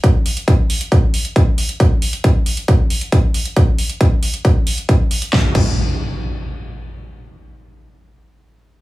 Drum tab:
CC |----------------|----------------|----------------|--x-------------|
HH |x-oxx-oxx-oxx-ox|x-oxx-oxx-oxx-ox|x-oxx-oxx-oxx-ox|----------------|
SD |----------------|----------------|----------------|o---------------|
BD |o---o---o---o---|o---o---o---o---|o---o---o---o---|o-o-------------|

CC |----------------|
HH |----------------|
SD |----------------|
BD |----------------|